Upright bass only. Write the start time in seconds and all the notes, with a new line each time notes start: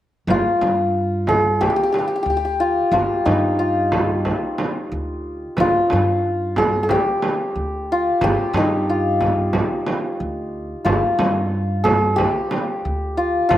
0.27 G1
0.62 G2
2.26 D2
2.91 G1
3.26 G2
4.92 D2
5.58 G1
5.93 G2
7.56 D2
8.21 G1
8.53 G2
10.20 D2
10.85 G1
11.18 G2
12.85 D2
13.51 G1